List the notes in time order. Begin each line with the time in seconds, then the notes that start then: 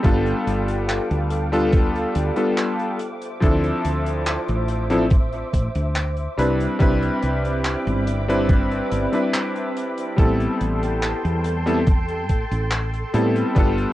Already playing: A4 G5
0.03 G1 G3 B3 D4 F4 A4 F5 D6, kick, closed hi-hat
0.26 closed hi-hat
0.47 G1, closed hi-hat
0.68 closed hi-hat
0.89 clap, closed hi-hat
1.11 D2, closed hi-hat
1.30 closed hi-hat
1.52 G3 B3 D4 F4 A4, closed hi-hat
1.73 kick, closed hi-hat
1.96 closed hi-hat
2.15 D2, closed hi-hat
2.36 G3 B3 D4 F4 A4, closed hi-hat
2.58 clap, closed hi-hat
2.80 closed hi-hat
2.99 C5 E5, closed hi-hat
3.22 closed hi-hat
3.40 D2 F3 C4 D4 E4 A4, kick, closed hi-hat
3.64 closed hi-hat
3.85 D2, closed hi-hat
4.06 closed hi-hat
4.26 clap, closed hi-hat
4.48 A1, closed hi-hat
4.68 closed hi-hat
4.90 F3 C4 D4 E4 A4, closed hi-hat
5.10 kick, closed hi-hat
5.33 closed hi-hat
5.54 A1, kick, closed hi-hat
5.75 D2, closed hi-hat
5.96 clap, closed hi-hat
6.17 closed hi-hat
6.37 C2 G3 C4 D4 E4 B4 E5 B5 D6, closed hi-hat
6.60 closed hi-hat
6.79 C2 G3 C4 D4 E4 B4, kick, closed hi-hat
7.02 closed hi-hat
7.22 C2, closed hi-hat
7.45 closed hi-hat
7.64 clap, closed hi-hat
7.87 G1, closed hi-hat
8.07 closed hi-hat
8.28 G3 C4 D4 E4 B4, closed hi-hat
8.49 kick, closed hi-hat
8.71 closed hi-hat
8.92 G1, closed hi-hat
9.12 G3 C4 D4 E4 B4, closed hi-hat
9.34 clap, closed hi-hat
9.56 closed hi-hat
9.77 closed hi-hat
9.98 closed hi-hat
10.17 A1 G3 B3 C4 E4 A4 G5 A5 C6, kick, closed hi-hat
10.40 closed hi-hat
10.61 A1, closed hi-hat
10.83 closed hi-hat
11.03 clap, closed hi-hat
11.25 E2, closed hi-hat
11.44 closed hi-hat
11.66 G3 B3 C4 E4 A4, closed hi-hat
11.87 kick, closed hi-hat
12.09 closed hi-hat
12.29 A2, kick, closed hi-hat
12.51 A1, closed hi-hat
12.71 clap, closed hi-hat
12.93 closed hi-hat
13.13 A2 G3 B3 C4 E4 A4, closed hi-hat
13.36 closed hi-hat
13.55 G1 G3 B3 D4 F4 A4 D5 G5 D6, kick, closed hi-hat
13.78 closed hi-hat